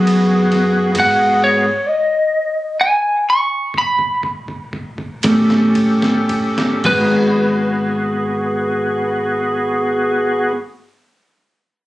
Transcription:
0, 0, Header, 1, 5, 480
1, 0, Start_track
1, 0, Key_signature, 5, "minor"
1, 0, Tempo, 902256
1, 511, Time_signature, 12, 3, 24, 8
1, 1482, Tempo, 972447
1, 2442, Tempo, 1032702
1, 2922, Tempo, 1084991
1, 3402, Tempo, 1113173
1, 5564, End_track
2, 0, Start_track
2, 0, Title_t, "Lead electric guitar"
2, 0, Program_c, 0, 29
2, 0, Note_on_c, 0, 71, 93
2, 530, Note_on_c, 0, 78, 112
2, 752, Note_off_c, 0, 78, 0
2, 765, Note_on_c, 0, 73, 84
2, 1005, Note_off_c, 0, 73, 0
2, 1005, Note_on_c, 0, 75, 87
2, 1475, Note_off_c, 0, 75, 0
2, 1493, Note_on_c, 0, 80, 93
2, 1715, Note_off_c, 0, 80, 0
2, 1735, Note_on_c, 0, 85, 98
2, 1956, Note_off_c, 0, 85, 0
2, 1974, Note_on_c, 0, 83, 105
2, 2198, Note_off_c, 0, 83, 0
2, 2912, Note_off_c, 0, 71, 0
2, 3408, Note_on_c, 0, 71, 83
2, 4985, Note_off_c, 0, 71, 0
2, 5564, End_track
3, 0, Start_track
3, 0, Title_t, "Tonewheel organ"
3, 0, Program_c, 1, 16
3, 0, Note_on_c, 1, 59, 64
3, 0, Note_on_c, 1, 66, 64
3, 0, Note_on_c, 1, 68, 73
3, 485, Note_off_c, 1, 59, 0
3, 487, Note_off_c, 1, 66, 0
3, 489, Note_off_c, 1, 68, 0
3, 494, Note_on_c, 1, 59, 67
3, 499, Note_on_c, 1, 68, 70
3, 500, Note_on_c, 1, 66, 65
3, 881, Note_off_c, 1, 59, 0
3, 884, Note_off_c, 1, 66, 0
3, 884, Note_off_c, 1, 68, 0
3, 2680, Note_on_c, 1, 67, 69
3, 2684, Note_on_c, 1, 69, 63
3, 2685, Note_on_c, 1, 61, 66
3, 3395, Note_off_c, 1, 67, 0
3, 3397, Note_off_c, 1, 61, 0
3, 3397, Note_off_c, 1, 69, 0
3, 3405, Note_on_c, 1, 66, 68
3, 3409, Note_on_c, 1, 59, 68
3, 3409, Note_on_c, 1, 68, 71
3, 4984, Note_off_c, 1, 66, 0
3, 4987, Note_off_c, 1, 59, 0
3, 4988, Note_off_c, 1, 68, 0
3, 5564, End_track
4, 0, Start_track
4, 0, Title_t, "Upright bass"
4, 0, Program_c, 2, 32
4, 0, Note_on_c, 2, 42, 107
4, 491, Note_off_c, 2, 42, 0
4, 508, Note_on_c, 2, 44, 82
4, 881, Note_off_c, 2, 44, 0
4, 2679, Note_on_c, 2, 45, 101
4, 3384, Note_off_c, 2, 45, 0
4, 3400, Note_on_c, 2, 32, 101
4, 4978, Note_off_c, 2, 32, 0
4, 5564, End_track
5, 0, Start_track
5, 0, Title_t, "Drums"
5, 38, Note_on_c, 9, 51, 58
5, 91, Note_off_c, 9, 51, 0
5, 275, Note_on_c, 9, 51, 58
5, 281, Note_on_c, 9, 38, 32
5, 328, Note_off_c, 9, 51, 0
5, 334, Note_off_c, 9, 38, 0
5, 505, Note_on_c, 9, 49, 72
5, 505, Note_on_c, 9, 51, 88
5, 509, Note_on_c, 9, 36, 112
5, 558, Note_off_c, 9, 49, 0
5, 558, Note_off_c, 9, 51, 0
5, 562, Note_off_c, 9, 36, 0
5, 1953, Note_on_c, 9, 36, 59
5, 2003, Note_off_c, 9, 36, 0
5, 2075, Note_on_c, 9, 36, 55
5, 2125, Note_off_c, 9, 36, 0
5, 2196, Note_on_c, 9, 36, 72
5, 2245, Note_off_c, 9, 36, 0
5, 2319, Note_on_c, 9, 36, 61
5, 2369, Note_off_c, 9, 36, 0
5, 2442, Note_on_c, 9, 36, 72
5, 2488, Note_off_c, 9, 36, 0
5, 2558, Note_on_c, 9, 36, 69
5, 2605, Note_off_c, 9, 36, 0
5, 2674, Note_on_c, 9, 51, 95
5, 2678, Note_on_c, 9, 36, 97
5, 2680, Note_on_c, 9, 38, 90
5, 2721, Note_off_c, 9, 51, 0
5, 2724, Note_off_c, 9, 36, 0
5, 2726, Note_off_c, 9, 38, 0
5, 2800, Note_on_c, 9, 38, 69
5, 2846, Note_off_c, 9, 38, 0
5, 2917, Note_on_c, 9, 51, 59
5, 2919, Note_on_c, 9, 36, 82
5, 2961, Note_off_c, 9, 51, 0
5, 2964, Note_off_c, 9, 36, 0
5, 3037, Note_on_c, 9, 38, 83
5, 3081, Note_off_c, 9, 38, 0
5, 3156, Note_on_c, 9, 51, 67
5, 3157, Note_on_c, 9, 36, 102
5, 3201, Note_off_c, 9, 36, 0
5, 3201, Note_off_c, 9, 51, 0
5, 3282, Note_on_c, 9, 38, 87
5, 3327, Note_off_c, 9, 38, 0
5, 3398, Note_on_c, 9, 49, 93
5, 3399, Note_on_c, 9, 36, 92
5, 3441, Note_off_c, 9, 49, 0
5, 3443, Note_off_c, 9, 36, 0
5, 5564, End_track
0, 0, End_of_file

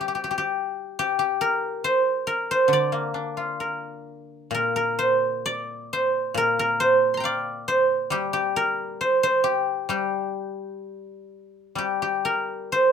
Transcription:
0, 0, Header, 1, 2, 480
1, 0, Start_track
1, 0, Tempo, 864553
1, 533, Time_signature, 2, 2, 24, 8
1, 1494, Tempo, 921659
1, 3414, Tempo, 882353
1, 5334, Tempo, 937500
1, 6877, End_track
2, 0, Start_track
2, 0, Title_t, "Guzheng"
2, 0, Program_c, 0, 107
2, 0, Note_on_c, 0, 55, 46
2, 0, Note_on_c, 0, 70, 63
2, 0, Note_on_c, 0, 72, 65
2, 4, Note_on_c, 0, 67, 37
2, 43, Note_off_c, 0, 67, 0
2, 45, Note_on_c, 0, 67, 40
2, 81, Note_off_c, 0, 67, 0
2, 83, Note_on_c, 0, 67, 35
2, 130, Note_off_c, 0, 67, 0
2, 132, Note_on_c, 0, 67, 42
2, 167, Note_off_c, 0, 72, 0
2, 168, Note_off_c, 0, 67, 0
2, 170, Note_on_c, 0, 67, 40
2, 208, Note_off_c, 0, 67, 0
2, 210, Note_on_c, 0, 67, 50
2, 547, Note_off_c, 0, 67, 0
2, 550, Note_on_c, 0, 67, 67
2, 630, Note_off_c, 0, 70, 0
2, 658, Note_off_c, 0, 67, 0
2, 661, Note_on_c, 0, 67, 55
2, 782, Note_on_c, 0, 70, 64
2, 1003, Note_off_c, 0, 55, 0
2, 1023, Note_on_c, 0, 72, 68
2, 1258, Note_off_c, 0, 70, 0
2, 1260, Note_on_c, 0, 70, 56
2, 1391, Note_off_c, 0, 72, 0
2, 1393, Note_on_c, 0, 72, 64
2, 1487, Note_on_c, 0, 50, 43
2, 1514, Note_on_c, 0, 74, 62
2, 1614, Note_on_c, 0, 58, 31
2, 1729, Note_on_c, 0, 62, 31
2, 1848, Note_on_c, 0, 65, 29
2, 1868, Note_off_c, 0, 74, 0
2, 1868, Note_on_c, 0, 73, 62
2, 1938, Note_off_c, 0, 67, 0
2, 1951, Note_off_c, 0, 72, 0
2, 1951, Note_off_c, 0, 73, 0
2, 1951, Note_on_c, 0, 72, 62
2, 1966, Note_off_c, 0, 70, 0
2, 1968, Note_on_c, 0, 70, 32
2, 2440, Note_on_c, 0, 46, 41
2, 2453, Note_off_c, 0, 70, 0
2, 2460, Note_on_c, 0, 70, 57
2, 2475, Note_off_c, 0, 72, 0
2, 2569, Note_off_c, 0, 70, 0
2, 2571, Note_on_c, 0, 70, 54
2, 2573, Note_off_c, 0, 58, 0
2, 2690, Note_on_c, 0, 72, 61
2, 2693, Note_off_c, 0, 62, 0
2, 2814, Note_off_c, 0, 65, 0
2, 2930, Note_off_c, 0, 50, 0
2, 2934, Note_on_c, 0, 74, 67
2, 3179, Note_off_c, 0, 72, 0
2, 3181, Note_on_c, 0, 72, 59
2, 3390, Note_off_c, 0, 46, 0
2, 3397, Note_on_c, 0, 46, 39
2, 3410, Note_off_c, 0, 70, 0
2, 3413, Note_on_c, 0, 70, 67
2, 3529, Note_off_c, 0, 70, 0
2, 3532, Note_on_c, 0, 70, 64
2, 3642, Note_off_c, 0, 72, 0
2, 3644, Note_on_c, 0, 72, 66
2, 3828, Note_on_c, 0, 84, 32
2, 3847, Note_on_c, 0, 82, 32
2, 3863, Note_on_c, 0, 79, 36
2, 3881, Note_on_c, 0, 77, 38
2, 3887, Note_off_c, 0, 74, 0
2, 3889, Note_on_c, 0, 74, 62
2, 4120, Note_off_c, 0, 72, 0
2, 4122, Note_on_c, 0, 72, 61
2, 4353, Note_on_c, 0, 55, 48
2, 4360, Note_on_c, 0, 67, 60
2, 4475, Note_off_c, 0, 67, 0
2, 4477, Note_on_c, 0, 67, 61
2, 4539, Note_off_c, 0, 84, 0
2, 4601, Note_off_c, 0, 70, 0
2, 4603, Note_on_c, 0, 70, 67
2, 4609, Note_off_c, 0, 82, 0
2, 4707, Note_off_c, 0, 79, 0
2, 4787, Note_off_c, 0, 77, 0
2, 4837, Note_off_c, 0, 46, 0
2, 4843, Note_off_c, 0, 72, 0
2, 4845, Note_on_c, 0, 72, 63
2, 4893, Note_off_c, 0, 74, 0
2, 4965, Note_off_c, 0, 72, 0
2, 4967, Note_on_c, 0, 72, 68
2, 5077, Note_off_c, 0, 67, 0
2, 5079, Note_on_c, 0, 67, 61
2, 5317, Note_off_c, 0, 55, 0
2, 5324, Note_on_c, 0, 55, 46
2, 5327, Note_off_c, 0, 67, 0
2, 5329, Note_on_c, 0, 67, 56
2, 5735, Note_off_c, 0, 70, 0
2, 6003, Note_off_c, 0, 72, 0
2, 6274, Note_off_c, 0, 55, 0
2, 6280, Note_on_c, 0, 55, 41
2, 6293, Note_off_c, 0, 67, 0
2, 6295, Note_on_c, 0, 67, 51
2, 6414, Note_off_c, 0, 67, 0
2, 6416, Note_on_c, 0, 67, 52
2, 6533, Note_on_c, 0, 70, 60
2, 6775, Note_on_c, 0, 72, 67
2, 6877, Note_off_c, 0, 55, 0
2, 6877, Note_off_c, 0, 67, 0
2, 6877, Note_off_c, 0, 70, 0
2, 6877, Note_off_c, 0, 72, 0
2, 6877, End_track
0, 0, End_of_file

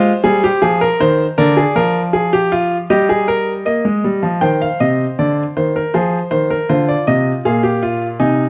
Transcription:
0, 0, Header, 1, 2, 480
1, 0, Start_track
1, 0, Tempo, 755668
1, 882, Time_signature, 4, 2, 24, 8
1, 5395, End_track
2, 0, Start_track
2, 0, Title_t, "Grand piano"
2, 0, Program_c, 0, 0
2, 0, Note_on_c, 0, 56, 84
2, 0, Note_on_c, 0, 65, 100
2, 0, Note_on_c, 0, 72, 84
2, 64, Note_off_c, 0, 65, 0
2, 66, Note_off_c, 0, 56, 0
2, 150, Note_on_c, 0, 68, 98
2, 152, Note_on_c, 0, 55, 82
2, 273, Note_off_c, 0, 68, 0
2, 278, Note_on_c, 0, 67, 92
2, 304, Note_off_c, 0, 55, 0
2, 392, Note_on_c, 0, 68, 93
2, 394, Note_on_c, 0, 53, 74
2, 397, Note_off_c, 0, 67, 0
2, 514, Note_off_c, 0, 68, 0
2, 516, Note_on_c, 0, 70, 98
2, 545, Note_off_c, 0, 53, 0
2, 629, Note_off_c, 0, 72, 0
2, 636, Note_off_c, 0, 70, 0
2, 636, Note_on_c, 0, 51, 81
2, 639, Note_on_c, 0, 72, 103
2, 787, Note_off_c, 0, 51, 0
2, 789, Note_off_c, 0, 72, 0
2, 875, Note_on_c, 0, 70, 101
2, 876, Note_on_c, 0, 74, 83
2, 878, Note_on_c, 0, 50, 82
2, 995, Note_off_c, 0, 70, 0
2, 995, Note_on_c, 0, 68, 90
2, 1028, Note_off_c, 0, 50, 0
2, 1115, Note_off_c, 0, 68, 0
2, 1115, Note_on_c, 0, 53, 79
2, 1116, Note_on_c, 0, 70, 97
2, 1267, Note_off_c, 0, 70, 0
2, 1354, Note_on_c, 0, 68, 90
2, 1474, Note_off_c, 0, 68, 0
2, 1479, Note_on_c, 0, 67, 95
2, 1597, Note_off_c, 0, 67, 0
2, 1600, Note_on_c, 0, 65, 94
2, 1750, Note_off_c, 0, 65, 0
2, 1814, Note_off_c, 0, 74, 0
2, 1817, Note_off_c, 0, 53, 0
2, 1843, Note_on_c, 0, 67, 92
2, 1843, Note_on_c, 0, 75, 78
2, 1844, Note_on_c, 0, 55, 76
2, 1960, Note_off_c, 0, 67, 0
2, 1964, Note_on_c, 0, 68, 86
2, 2081, Note_off_c, 0, 68, 0
2, 2083, Note_on_c, 0, 70, 94
2, 2233, Note_off_c, 0, 70, 0
2, 2312, Note_off_c, 0, 55, 0
2, 2314, Note_off_c, 0, 75, 0
2, 2320, Note_on_c, 0, 58, 71
2, 2323, Note_on_c, 0, 75, 79
2, 2441, Note_off_c, 0, 58, 0
2, 2444, Note_on_c, 0, 56, 68
2, 2564, Note_off_c, 0, 56, 0
2, 2568, Note_on_c, 0, 55, 73
2, 2685, Note_on_c, 0, 53, 73
2, 2687, Note_off_c, 0, 55, 0
2, 2797, Note_off_c, 0, 75, 0
2, 2802, Note_on_c, 0, 72, 71
2, 2803, Note_on_c, 0, 51, 72
2, 2803, Note_on_c, 0, 79, 75
2, 2806, Note_off_c, 0, 53, 0
2, 2926, Note_off_c, 0, 79, 0
2, 2932, Note_on_c, 0, 77, 72
2, 2957, Note_off_c, 0, 51, 0
2, 3050, Note_off_c, 0, 77, 0
2, 3051, Note_on_c, 0, 48, 61
2, 3051, Note_on_c, 0, 75, 74
2, 3202, Note_off_c, 0, 48, 0
2, 3202, Note_off_c, 0, 75, 0
2, 3295, Note_on_c, 0, 50, 63
2, 3295, Note_on_c, 0, 74, 71
2, 3445, Note_off_c, 0, 50, 0
2, 3445, Note_off_c, 0, 74, 0
2, 3526, Note_off_c, 0, 72, 0
2, 3535, Note_on_c, 0, 51, 65
2, 3536, Note_on_c, 0, 72, 72
2, 3653, Note_off_c, 0, 72, 0
2, 3658, Note_on_c, 0, 70, 69
2, 3685, Note_off_c, 0, 51, 0
2, 3773, Note_on_c, 0, 72, 69
2, 3774, Note_off_c, 0, 70, 0
2, 3774, Note_on_c, 0, 68, 72
2, 3775, Note_on_c, 0, 53, 68
2, 3924, Note_off_c, 0, 53, 0
2, 3924, Note_off_c, 0, 68, 0
2, 3998, Note_off_c, 0, 72, 0
2, 4008, Note_on_c, 0, 72, 76
2, 4009, Note_on_c, 0, 51, 68
2, 4128, Note_off_c, 0, 72, 0
2, 4131, Note_on_c, 0, 70, 71
2, 4160, Note_off_c, 0, 51, 0
2, 4250, Note_off_c, 0, 70, 0
2, 4250, Note_on_c, 0, 65, 61
2, 4252, Note_on_c, 0, 50, 66
2, 4253, Note_on_c, 0, 72, 74
2, 4370, Note_off_c, 0, 72, 0
2, 4373, Note_on_c, 0, 74, 74
2, 4402, Note_off_c, 0, 50, 0
2, 4490, Note_off_c, 0, 74, 0
2, 4492, Note_on_c, 0, 75, 80
2, 4494, Note_on_c, 0, 48, 70
2, 4641, Note_off_c, 0, 75, 0
2, 4642, Note_off_c, 0, 48, 0
2, 4716, Note_off_c, 0, 65, 0
2, 4733, Note_on_c, 0, 68, 80
2, 4734, Note_on_c, 0, 46, 68
2, 4734, Note_on_c, 0, 77, 68
2, 4848, Note_off_c, 0, 68, 0
2, 4848, Note_on_c, 0, 67, 73
2, 4965, Note_off_c, 0, 67, 0
2, 4971, Note_on_c, 0, 65, 79
2, 5119, Note_off_c, 0, 65, 0
2, 5195, Note_off_c, 0, 46, 0
2, 5196, Note_off_c, 0, 77, 0
2, 5206, Note_on_c, 0, 63, 81
2, 5207, Note_on_c, 0, 80, 67
2, 5208, Note_on_c, 0, 48, 67
2, 5354, Note_off_c, 0, 63, 0
2, 5356, Note_off_c, 0, 48, 0
2, 5395, Note_off_c, 0, 80, 0
2, 5395, End_track
0, 0, End_of_file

